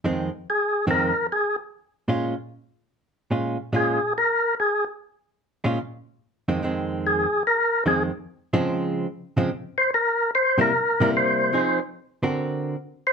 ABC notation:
X:1
M:4/4
L:1/8
Q:"Swing" 1/4=146
K:Fm
V:1 name="Tonewheel organ"
z2 A2 B2 A z | z8 | z2 A2 B2 A z | z8 |
z2 A2 B2 A z | z6 z c | B2 c B3 c2- | c z6 c |]
V:2 name="Hollow-body jazz guitar" clef=bass
[F,,E,A,C] z3 [F,,E,A,C] z3 | z2 [B,,A,DF] z4 z | [B,,A,DF] z [B,,A,DF] z4 z | z3 [B,,A,DF] z3 [F,,E,A,C] |
[F,,E,A,C]3 z3 [F,,E,A,C] z | z [D,F,A,C]3 z [D,F,A,C] z2 | z3 [C,G,B,=E] z [C,G,B,E]3 | [F,CEA] z2 [=D,C_GB]3 z2 |]